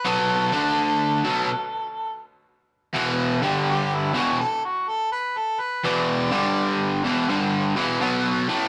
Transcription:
0.05 overdriven electric guitar B2 F#3 B3, harmonica A4
0.52 overdriven electric guitar D3 A3 D4
1.24 overdriven electric guitar B2 F#3 B3
2.94 overdriven electric guitar E2 B2 E3
3.42 overdriven electric guitar G2 D3 G3
3.69 harmonica G4
3.94 harmonica E4
4.13 overdriven electric guitar E2 B2 E3
4.18 harmonica F#4
4.41 harmonica A4
4.65 harmonica F#4
4.88 harmonica A4
5.12 harmonica B4
5.38 harmonica A4
5.60 harmonica B4
5.84 overdriven electric guitar E2 B2 E3, harmonica D5
6.10 harmonica D5
6.31 overdriven electric guitar G2 D3 G3
7.04 overdriven electric guitar E2 B2 E3
7.28 overdriven electric guitar G2 D3 G3
7.76 overdriven electric guitar E2 B2 E3
8.01 overdriven electric guitar B2 F#3 B3
8.48 overdriven electric guitar A2 E3 A3

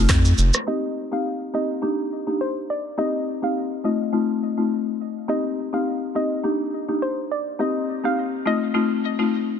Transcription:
Already playing: marimba A3 C4 D#4 F4
0.09 analog synth bass F2, kick, cross-stick, clap, shaker
0.25 shaker
0.38 analog synth bass F1, shaker
0.54 cross-stick, shaker
0.67 marimba A#3 C4 D#4 G4, synth pluck D#5
1.12 marimba A#3 C4 D#4 G4, synth pluck F5
1.53 marimba A#3 C4 D#4 G4, synth pluck D#5
1.82 marimba A#3 D4 D#4 G4
2.27 marimba A#3 D4 D#4 G4
2.41 synth pluck C5
2.70 synth pluck D5
2.97 marimba A#3 C4 D#4 G4, synth pluck D#5
3.42 marimba A#3 C4 D#4 G4, synth pluck F5
3.84 marimba A3 C4 D#4 F4, synth pluck D#5
4.13 marimba A3 C4 D#4 F4
4.57 marimba A3 C4 D#4 F4
5.28 marimba A#3 C4 D#4 G4, synth pluck D#5
5.73 marimba A#3 C4 D#4 G4, synth pluck F5
6.15 marimba A#3 C4 D#4 G4, synth pluck D#5
6.44 marimba A#3 D4 D#4 G4
6.88 marimba A#3 D4 D#4 G4
7.02 synth pluck C5
7.31 synth pluck D5
7.59 marimba A#3 C4 D#4 G4, synth pluck D#5
8.04 marimba A#3 C4 D#4 G4, synth pluck F5
8.46 marimba A3 C4 D#4 F4, synth pluck D#5
8.74 marimba A3 C4 D#4 F4
9.19 marimba A3 C4 D#4 F4

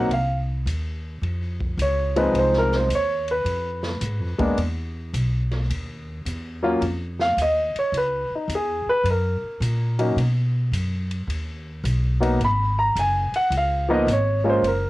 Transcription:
Already playing: grand piano F#5
0.09 upright bass C2, grand piano F5, ride
0.66 upright bass D#2, hi-hat pedal, ride
1.22 upright bass F2, ride
1.60 kick
1.78 upright bass C#2, hi-hat pedal, ride
1.82 grand piano C#5
2.16 grand piano F3 G#3 C4 D#4 B4, ride
2.34 upright bass C2, ride
2.39 grand piano C5
2.53 snare
2.58 grand piano A#4
2.72 grand piano C5, snare
2.89 upright bass D#2, hi-hat pedal, ride
2.95 grand piano C#5
3.28 grand piano B4, ride
3.45 upright bass F2, ride
3.83 snare
4.01 upright bass G#2, hi-hat pedal, ride
4.19 upright bass F2
4.38 upright bass D#2, grand piano G#3 A#3 B3 D4, kick, ride
4.57 upright bass E2, ride
5.13 upright bass B1, hi-hat pedal, ride
5.51 snare, ride
5.69 upright bass D#2, ride
6.25 upright bass E2, hi-hat pedal, ride
6.63 grand piano F#3 A#3 C#4 F4
6.81 upright bass F2, ride
7.19 grand piano F5, snare
7.37 upright bass D#2, hi-hat pedal, ride
7.42 grand piano D#5
7.75 grand piano C#5, muted upright bass stroke, ride
7.92 upright bass C#2, ride
7.97 grand piano B4
8.30 muted upright bass stroke
8.35 grand piano D#4
8.48 upright bass E2, hi-hat pedal, ride
8.55 grand piano G#4
8.86 grand piano B4, muted upright bass stroke
9.03 upright bass F#2, ride
9.11 grand piano A#4
9.42 muted upright bass stroke
9.60 upright bass A#2, hi-hat pedal, ride
9.99 grand piano F#3 A#3 C#4 D#4, ride
10.16 upright bass B2, ride
10.72 upright bass F#2, hi-hat pedal, ride
11.11 ride
11.27 upright bass D#2, ride
11.84 upright bass B1, hi-hat pedal, ride
12.20 grand piano F#3 A#3 B3 D#4, ride
12.39 upright bass G#1, ride
12.45 grand piano B5
12.79 grand piano A#5
12.96 upright bass F#1, grand piano G#5, hi-hat pedal, ride
13.32 grand piano F#5, muted upright bass stroke, ride
13.50 upright bass C#2, ride
13.58 grand piano F5
13.89 grand piano F3 A#3 B3 D#4
13.94 grand piano D#5
14.07 upright bass G#1, hi-hat pedal, ride
14.13 grand piano C#5
14.44 grand piano G#3 A#3 C#4 F4
14.50 grand piano C5
14.62 upright bass F#1, ride
14.68 grand piano A#4

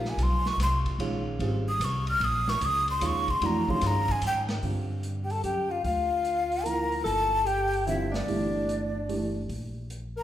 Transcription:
Already playing: upright bass A#1, upright piano F3 A#3 D#4 G4, flute F5
0.05 snare
0.09 flute G#5
0.17 upright bass B1, hi-hat pedal, ride
0.23 flute C6
0.46 flute C#6, snare
0.58 upright bass C2, snare, hi-hat pedal, ride
0.63 flute C6
0.86 kick, ride
0.99 upright bass A#1, upright piano D#3 G#3 C#4 F4, ride
1.39 upright bass G#1, upright piano G3 C4 F4 G#4, ride
1.69 flute D#6
1.80 upright bass C2, hi-hat pedal, ride
1.84 flute C#6
2.07 flute F6, ride
2.20 upright bass A#1, flute D#6, ride
2.48 flute C#6, snare
2.61 upright bass C#2, hi-hat pedal, ride
2.65 flute D#6
2.88 flute C6, ride
3.01 upright bass D#2, upright piano D#3 G#3 C#4 F4, hi-hat pedal, ride
3.06 flute C#6
3.28 flute C6, kick, ride
3.41 upright bass F2, upright piano E3 A3 D4 F#4, ride
3.46 flute A#5
3.68 upright piano D#3 C#4 F4 G#4, flute C6, kick
3.81 upright bass G2, snare, hi-hat pedal, ride
3.87 flute A#5
4.08 flute G#5, kick, ride
4.22 upright bass G#2, hi-hat pedal, ride
4.27 flute G5
4.48 snare, ride
4.62 upright bass G2, upright piano D3 G3 C4 F4, open hi-hat
5.03 closed hi-hat
5.24 alto saxophone G4, flute G5
5.30 alto saxophone A4, flute A5, open hi-hat
5.44 upright bass F#2, alto saxophone G4, flute G5, closed hi-hat
5.70 alto saxophone F4, flute F5
5.84 upright bass D2, alto saxophone F4, flute F5, open hi-hat
6.25 closed hi-hat
6.52 open hi-hat
6.65 upright piano F3 A#3 E4 A#4, alto saxophone A#4, flute A#5, closed hi-hat
6.92 open hi-hat
7.04 upright bass G1, alto saxophone A4, flute A5, open hi-hat
7.45 alto saxophone G4, flute G5, closed hi-hat
7.73 open hi-hat
7.86 upright piano D3 G3 C4 F4, alto saxophone E4, flute E5, closed hi-hat
8.12 alto saxophone D4, flute D5, snare, open hi-hat
8.28 upright bass G1, upright piano E3 A3 D4 G4, open hi-hat
8.69 closed hi-hat
9.09 upright piano E3 A3 D4 G4, open hi-hat
9.49 upright bass A#1, open hi-hat
9.90 closed hi-hat
10.17 alto saxophone A#4, flute A#5

